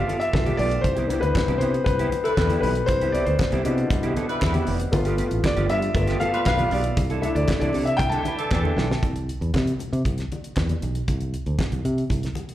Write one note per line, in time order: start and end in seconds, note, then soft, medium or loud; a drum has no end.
0.00 0.33 A3 medium
0.00 0.33 B3 soft
0.00 0.34 F4 medium
0.00 0.87 G4 medium
0.00 0.86 A4 medium
0.00 0.57 D5 medium
0.00 0.20 E5 loud
0.00 0.22 F5 medium
0.06 0.21 B3 medium
0.06 0.20 F4 medium
0.06 0.19 A4 medium
0.06 closed hi-hat medium
0.06 muted conga soft
0.19 0.60 E5 loud
0.19 muted clean electric guitar stroke soft
0.19 closed hi-hat soft
0.33 0.51 B1 medium
0.33 0.56 A3 soft
0.33 0.56 B3 soft
0.33 0.57 F4 medium
0.33 muted clean electric guitar stroke soft
0.33 kick loud
0.33 snare loud
0.33 high conga medium
0.46 0.57 B3 medium
0.46 0.58 F4 medium
0.46 0.59 G4 medium
0.46 closed hi-hat soft
0.46 high conga medium
0.57 0.77 B1 loud
0.57 0.72 B3 medium
0.57 0.72 F4 medium
0.57 0.70 G4 medium
0.57 0.84 D5 loud
0.57 open hi-hat medium
0.71 muted clean electric guitar stroke soft
0.71 closed hi-hat medium
0.81 1.11 C2 loud
0.81 1.22 C5 medium
0.81 muted clean electric guitar stroke soft
0.81 kick loud
0.81 closed hi-hat loud
0.81 muted conga soft
0.95 1.07 B3 medium
0.95 1.08 E4 medium
0.95 1.09 G4 medium
0.95 closed hi-hat soft
1.08 1.43 B3 medium
1.08 1.23 B3 medium
1.08 1.43 D4 medium
1.08 1.43 E4 medium
1.08 1.23 E4 medium
1.08 1.22 G4 medium
1.08 closed hi-hat medium
1.21 1.31 D2 medium
1.21 1.61 B4 medium
1.21 muted clean electric guitar stroke medium
1.21 closed hi-hat soft
1.35 muted clean electric guitar stroke soft
1.35 kick loud
1.35 snare loud
1.35 clap medium
1.35 high conga medium
1.48 1.57 C2 medium
1.48 1.60 B3 medium
1.48 1.61 E4 medium
1.48 1.62 G4 medium
1.48 closed hi-hat soft
1.58 1.78 C3 medium
1.58 1.75 B3 medium
1.58 1.86 C5 medium
1.58 closed hi-hat medium
1.62 1.75 E4 medium
1.62 1.74 G4 medium
1.74 muted clean electric guitar stroke medium
1.74 closed hi-hat soft
1.84 2.04 C2 medium
1.84 2.21 B4 medium
1.84 muted clean electric guitar stroke soft
1.84 kick loud
1.84 closed hi-hat medium
1.84 muted conga soft
1.99 2.11 B3 medium
1.99 2.11 E4 medium
1.99 2.12 G4 loud
1.99 closed hi-hat medium
2.12 muted clean electric guitar stroke soft
2.12 closed hi-hat medium
2.12 muted conga medium
2.24 2.33 G3 medium
2.24 2.32 E4 medium
2.24 2.64 A4 medium
2.24 2.33 B4 medium
2.24 muted clean electric guitar stroke medium
2.24 closed hi-hat soft
2.37 2.56 E2 medium
2.37 2.74 G3 medium
2.37 2.74 E4 medium
2.37 2.74 B4 medium
2.37 kick loud
2.37 snare loud
2.37 clap medium
2.37 high conga medium
2.49 2.61 B3 medium
2.49 2.61 E4 medium
2.49 2.62 G4 medium
2.49 closed hi-hat medium
2.49 high conga medium
2.61 2.81 B1 loud
2.61 2.76 B3 medium
2.61 2.74 E4 medium
2.61 2.73 G4 medium
2.61 2.86 B4 medium
2.61 open hi-hat medium
2.74 muted clean electric guitar stroke soft
2.74 closed hi-hat medium
2.86 3.15 C2 loud
2.86 3.11 C5 loud
2.86 muted clean electric guitar stroke soft
2.86 kick loud
2.86 closed hi-hat medium
2.86 muted conga medium
3.01 3.12 B3 medium
3.01 3.13 E4 medium
3.01 3.14 G4 medium
3.01 closed hi-hat soft
3.12 3.27 B3 medium
3.12 3.27 E4 medium
3.12 3.26 G4 medium
3.12 3.26 D5 medium
3.12 closed hi-hat medium
3.25 3.36 D2 medium
3.25 3.99 C5 medium
3.25 muted clean electric guitar stroke soft
3.25 closed hi-hat soft
3.39 muted clean electric guitar stroke soft
3.39 kick loud
3.39 snare loud
3.39 clap medium
3.39 high conga medium
3.52 3.62 C2 loud
3.52 3.63 B3 medium
3.52 3.63 E4 medium
3.52 3.64 G4 medium
3.52 closed hi-hat soft
3.64 3.99 B2 medium
3.64 3.84 C3 loud
3.64 3.78 B3 medium
3.64 3.99 D4 soft
3.64 3.77 E4 medium
3.64 3.99 E4 medium
3.64 3.75 G4 medium
3.64 closed hi-hat medium
3.77 muted clean electric guitar stroke medium
3.77 closed hi-hat soft
3.89 4.09 C2 medium
3.89 muted clean electric guitar stroke soft
3.89 kick loud
3.89 closed hi-hat medium
3.89 low conga medium
4.03 4.14 B3 medium
4.03 4.15 E4 medium
4.03 4.17 G4 medium
4.03 closed hi-hat medium
4.16 4.30 B3 medium
4.16 4.28 E4 medium
4.16 4.28 A4 medium
4.16 closed hi-hat medium
4.16 muted conga medium
4.28 4.37 G3 medium
4.28 4.37 E4 medium
4.28 4.37 B4 medium
4.28 muted clean electric guitar stroke soft
4.28 closed hi-hat soft
4.41 4.60 E2 medium
4.41 4.78 G3 medium
4.41 4.78 E4 medium
4.41 4.78 B4 medium
4.41 muted clean electric guitar stroke soft
4.41 kick loud
4.41 snare loud
4.41 clap loud
4.41 high conga medium
4.53 4.64 B3 medium
4.53 4.65 E4 medium
4.53 4.66 G4 medium
4.53 closed hi-hat medium
4.53 high conga medium
4.65 4.86 F1 medium
4.65 4.80 B3 medium
4.65 4.79 E4 medium
4.65 4.79 G4 medium
4.65 open hi-hat medium
4.80 muted clean electric guitar stroke soft
4.80 closed hi-hat medium
4.92 5.20 G1 loud
4.92 5.26 A3 medium
4.92 5.27 B3 medium
4.92 5.27 F4 medium
4.92 muted clean electric guitar stroke soft
4.92 kick loud
4.92 closed hi-hat medium
4.92 muted conga medium
5.05 5.16 B3 medium
5.05 5.17 F4 medium
5.05 5.18 G4 medium
5.05 closed hi-hat soft
5.17 5.31 B3 medium
5.17 5.30 F4 medium
5.17 5.29 G4 medium
5.17 closed hi-hat medium
5.30 5.40 A1 medium
5.30 muted clean electric guitar stroke soft
5.30 closed hi-hat soft
5.44 5.71 D5 medium
5.44 muted clean electric guitar stroke soft
5.44 kick loud
5.44 snare loud
5.44 clap medium
5.44 high conga medium
5.56 5.66 G1 loud
5.56 5.67 B3 medium
5.56 5.68 F4 medium
5.56 5.68 G4 medium
5.56 closed hi-hat medium
5.68 5.88 G2 medium
5.68 5.83 B3 medium
5.68 5.81 F4 medium
5.68 5.80 G4 medium
5.68 6.22 E5 loud
5.68 closed hi-hat medium
5.81 muted clean electric guitar stroke soft
5.81 closed hi-hat soft
5.95 6.13 G1 medium
5.95 6.18 A3 soft
5.95 6.18 B3 soft
5.95 6.18 F4 medium
5.95 muted clean electric guitar stroke soft
5.95 kick loud
5.95 closed hi-hat medium
5.95 muted conga soft
6.07 6.19 B3 medium
6.07 6.19 F4 medium
6.07 6.21 G4 medium
6.07 snare soft
6.07 closed hi-hat medium
6.20 6.34 B3 medium
6.20 6.33 F4 medium
6.20 6.32 A4 medium
6.20 6.45 F5 loud
6.20 closed hi-hat medium
6.20 muted conga medium
6.33 6.41 G3 medium
6.33 6.41 F4 medium
6.33 6.41 B4 medium
6.33 muted clean electric guitar stroke medium
6.33 closed hi-hat medium
6.45 6.64 B1 medium
6.45 6.82 G3 medium
6.45 6.82 F4 medium
6.45 6.83 B4 loud
6.45 6.73 F5 loud
6.45 muted clean electric guitar stroke soft
6.45 kick loud
6.45 snare loud
6.45 clap loud
6.45 high conga medium
6.58 6.70 B3 medium
6.58 6.71 F4 medium
6.58 6.72 G4 medium
6.58 closed hi-hat medium
6.58 high conga medium
6.71 6.90 B1 loud
6.71 6.85 B3 medium
6.71 6.83 F4 medium
6.71 6.82 G4 medium
6.71 6.96 D5 medium
6.71 open hi-hat medium
6.83 muted clean electric guitar stroke soft
6.83 closed hi-hat medium
6.97 7.24 C2 loud
6.97 muted clean electric guitar stroke soft
6.97 kick loud
6.97 closed hi-hat medium
6.97 muted conga medium
7.10 7.22 D4 medium
7.10 7.23 E4 medium
7.10 7.23 A4 medium
7.10 closed hi-hat soft
7.21 7.56 A3 medium
7.21 7.57 D4 medium
7.21 7.37 D4 medium
7.21 7.57 E4 medium
7.21 7.35 E4 medium
7.21 7.34 A4 medium
7.21 7.36 E5 medium
7.21 closed hi-hat medium
7.35 7.44 D2 medium
7.35 7.58 D5 medium
7.35 muted clean electric guitar stroke soft
7.35 closed hi-hat soft
7.48 muted clean electric guitar stroke soft
7.48 kick loud
7.48 snare loud
7.48 clap medium
7.48 high conga medium
7.60 7.70 C2 loud
7.60 7.72 D4 medium
7.60 7.73 E4 medium
7.60 7.73 A4 medium
7.60 7.87 D5 medium
7.60 closed hi-hat soft
7.73 7.92 C3 medium
7.73 7.87 D4 medium
7.73 7.86 E4 medium
7.73 7.85 A4 medium
7.73 open hi-hat medium
7.73 low conga medium
7.85 8.00 E5 medium
7.85 muted clean electric guitar stroke soft
7.85 closed hi-hat soft
7.97 8.18 C2 medium
7.97 8.10 G5 loud
7.97 muted clean electric guitar stroke soft
7.97 kick loud
7.97 closed hi-hat loud
7.97 low conga medium
8.09 8.25 E4 medium
8.09 8.26 A4 medium
8.09 8.59 A5 loud
8.09 closed hi-hat medium
8.14 8.24 D4 medium
8.25 8.39 D4 medium
8.25 8.38 E4 medium
8.25 8.38 B4 medium
8.25 closed hi-hat medium
8.25 muted conga medium
8.38 8.46 E3 medium
8.38 8.47 D4 medium
8.38 8.47 A4 medium
8.38 muted clean electric guitar stroke medium
8.38 closed hi-hat soft
8.50 8.69 E2 loud
8.50 8.87 E3 medium
8.50 8.88 D4 medium
8.50 8.88 A4 medium
8.50 muted clean electric guitar stroke soft
8.50 kick loud
8.50 snare medium
8.50 clap medium
8.50 high conga medium
8.64 8.75 D4 medium
8.64 8.76 E4 medium
8.64 8.77 A4 medium
8.64 high conga medium
8.76 8.94 B1 medium
8.76 8.90 D4 medium
8.76 8.88 E4 medium
8.76 8.88 A4 medium
8.76 snare medium
8.89 muted clean electric guitar stroke soft
8.89 snare loud
9.03 9.29 C2 medium
9.03 kick loud
9.03 closed hi-hat medium
9.03 muted conga soft
9.16 closed hi-hat soft
9.29 closed hi-hat medium
9.41 9.50 E2 medium
9.41 closed hi-hat soft
9.54 9.72 C3 medium
9.54 kick loud
9.54 snare loud
9.54 clap medium
9.54 high conga medium
9.67 closed hi-hat soft
9.79 closed hi-hat medium
9.79 low conga medium
9.93 10.01 C3 medium
9.93 closed hi-hat soft
10.05 10.23 C2 medium
10.05 kick loud
10.05 closed hi-hat medium
10.18 snare soft
10.18 closed hi-hat soft
10.32 closed hi-hat soft
10.32 muted conga soft
10.44 closed hi-hat soft
10.57 10.75 E2 medium
10.57 kick loud
10.57 snare loud
10.57 clap medium
10.57 high conga medium
10.69 closed hi-hat soft
10.69 high conga medium
10.82 11.01 B1 medium
10.82 closed hi-hat medium
10.95 closed hi-hat medium
11.08 11.35 C2 medium
11.08 kick medium
11.08 closed hi-hat medium
11.08 muted conga soft
11.20 closed hi-hat soft
11.34 closed hi-hat medium
11.46 11.55 D2 medium
11.46 closed hi-hat soft
11.59 kick loud
11.59 snare loud
11.59 clap medium
11.59 high conga medium
11.72 11.81 C2 medium
11.72 closed hi-hat soft
11.85 12.03 C3 medium
11.85 closed hi-hat medium
11.98 closed hi-hat soft
12.10 12.28 C2 medium
12.10 kick loud
12.10 closed hi-hat medium
12.10 muted conga soft
12.10 low conga medium
12.23 snare soft
12.23 closed hi-hat soft
12.35 closed hi-hat soft
12.35 muted conga medium
12.49 closed hi-hat soft